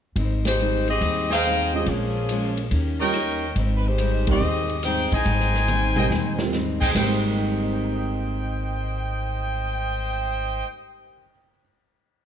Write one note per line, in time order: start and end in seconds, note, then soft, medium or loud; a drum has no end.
0.16 0.97 G#1 medium
0.16 0.47 G#2 soft
0.16 0.47 G3 soft
0.16 0.48 C4 soft
0.16 ride medium
0.20 0.48 D#4 medium
0.45 0.86 G#3 medium
0.45 0.86 D#4 medium
0.45 0.86 G4 medium
0.45 0.86 C5 medium
0.45 snare medium
0.45 ride medium
0.59 0.90 G#2 medium
0.59 0.90 G3 medium
0.59 0.91 C4 medium
0.59 0.91 D#4 medium
0.59 hi-hat pedal soft
0.88 1.28 C4 medium
0.88 1.28 G4 medium
0.88 1.28 G#4 medium
0.88 1.28 D#5 loud
0.88 ride soft
1.01 1.82 D#2 medium
1.01 1.32 G#2 soft
1.01 1.32 G3 soft
1.01 1.33 C4 soft
1.01 1.33 D#4 soft
1.01 ride medium
1.30 1.71 D#4 medium
1.30 1.84 G#4 medium
1.30 1.71 G#4 medium
1.30 1.84 C5 medium
1.30 1.71 C5 medium
1.30 1.84 D#5 medium
1.30 1.71 F5 loud
1.30 1.84 G5 loud
1.30 snare soft
1.44 1.75 G#2 medium
1.44 1.75 G3 medium
1.44 1.75 C4 medium
1.44 1.76 D#4 medium
1.44 cross-stick medium
1.44 hi-hat pedal medium
1.44 ride medium
1.73 1.85 G#3 medium
1.73 1.86 C4 medium
1.73 1.87 C4 medium
1.73 1.86 C#4 medium
1.73 1.86 F4 medium
1.73 1.88 G4 medium
1.73 1.87 G#4 medium
1.73 1.88 D#5 medium
1.86 2.67 A#1 medium
1.86 2.17 A#2 soft
1.86 2.72 F3 medium
1.86 2.18 F3 soft
1.86 2.18 G#3 soft
1.86 2.72 A#3 medium
1.86 2.72 C#4 medium
1.86 2.72 G#4 medium
1.86 ride medium
1.91 2.19 C#4 medium
2.29 2.60 A#2 medium
2.29 2.60 F3 medium
2.29 2.60 G#3 medium
2.29 2.61 C#4 medium
2.29 hi-hat pedal medium
2.29 ride medium
2.57 ride soft
2.71 3.52 D#2 medium
2.71 3.01 D#3 medium
2.71 3.02 A#3 medium
2.71 3.03 C#4 medium
2.71 3.03 G4 medium
2.71 ride medium
3.00 3.13 G3 medium
3.00 3.13 A#3 soft
3.00 3.13 C#4 medium
3.00 3.14 F4 medium
3.00 3.54 A#4 medium
3.00 3.54 C#5 medium
3.00 3.54 D#5 medium
3.00 3.54 G5 medium
3.13 3.44 D#3 medium
3.13 3.45 A#3 medium
3.13 3.45 C#4 medium
3.13 3.45 G4 medium
3.13 cross-stick medium
3.13 hi-hat pedal medium
3.13 ride medium
3.56 4.37 G#1 medium
3.56 3.86 G#2 soft
3.56 3.87 G3 medium
3.56 3.88 C4 medium
3.56 3.88 D#4 medium
3.56 ride medium
3.77 3.86 B4 medium
3.87 4.29 G#3 medium
3.87 4.29 D#4 medium
3.87 4.29 G4 medium
3.87 4.29 C5 medium
3.98 4.29 G#2 medium
3.98 4.29 G3 medium
3.98 4.30 C4 medium
3.98 4.30 D#4 medium
3.98 hi-hat pedal medium
3.98 ride medium
4.27 4.40 G3 medium
4.27 4.40 A#3 medium
4.27 4.40 C4 medium
4.27 4.81 C4 medium
4.27 4.41 D#4 medium
4.27 4.81 G4 medium
4.27 4.81 G#4 medium
4.27 4.81 D#5 medium
4.27 kick medium
4.27 ride medium
4.41 5.08 D#2 medium
4.41 4.71 G#2 soft
4.41 4.72 G3 soft
4.41 4.72 C4 soft
4.45 4.73 D#4 medium
4.69 ride soft
4.83 5.13 G#2 medium
4.83 5.14 G3 medium
4.83 5.14 C4 medium
4.83 5.13 D#4 medium
4.83 5.15 D#4 medium
4.83 5.13 G#4 medium
4.83 5.13 C5 medium
4.83 5.13 G5 loud
4.83 cross-stick medium
4.83 hi-hat pedal medium
4.83 ride medium
5.12 5.25 A1 medium
5.12 6.50 D#4 medium
5.12 5.66 G#4 medium
5.12 5.66 C5 medium
5.12 6.50 C5 medium
5.12 5.66 D#5 medium
5.12 6.50 G5 medium
5.12 6.50 G#5 loud
5.12 kick medium
5.12 ride soft
5.25 6.06 G#1 medium
5.25 5.56 G#2 soft
5.25 5.57 G3 soft
5.25 5.57 C4 soft
5.25 5.57 D#4 soft
5.25 ride medium
5.40 snare soft
5.54 snare soft
5.68 5.98 G#2 medium
5.68 5.99 G3 medium
5.68 5.99 C4 medium
5.68 6.00 D#4 medium
5.68 hi-hat pedal medium
5.68 high tom soft
5.96 6.09 G3 medium
5.96 6.09 A#3 medium
5.96 6.10 C4 medium
5.96 6.10 D#4 medium
5.96 6.06 G#4 medium
5.96 6.06 C5 medium
5.96 6.06 D#5 medium
5.96 6.06 G5 medium
5.96 mid tom medium
6.10 6.91 D#2 medium
6.10 6.41 G#2 medium
6.10 6.42 G3 medium
6.10 6.42 C4 medium
6.10 snare medium
6.14 6.42 D#4 medium
6.39 6.52 G3 medium
6.39 6.52 A#3 medium
6.39 6.52 C4 medium
6.39 6.53 F4 medium
6.39 snare medium
6.53 6.83 G#2 medium
6.53 6.84 G3 medium
6.53 6.84 C4 medium
6.53 6.84 D#4 medium
6.53 snare medium
6.53 hi-hat pedal medium
6.81 6.90 G#4 medium
6.81 6.90 C5 medium
6.81 6.90 D#5 medium
6.81 6.90 G5 loud
6.81 kick medium
6.81 crash medium
6.90 10.60 G#2 medium
6.90 10.61 G#2 medium
6.90 10.63 D#3 soft
6.95 10.61 G#1 medium
6.95 10.66 G3 soft
6.95 10.67 G3 medium
6.95 10.69 A#3 medium
6.95 10.66 C5 medium
6.95 10.66 D#5 medium
6.95 10.66 G5 medium
6.95 snare medium
6.95 ride bell medium
7.02 10.72 C4 medium
7.06 10.76 D#4 medium
7.38 11.04 D#4 soft
7.45 11.11 G4 soft
7.54 11.20 A#4 soft
7.63 11.29 D#5 soft
7.73 11.39 G5 soft
7.84 11.50 A#5 soft
7.95 11.61 D#6 soft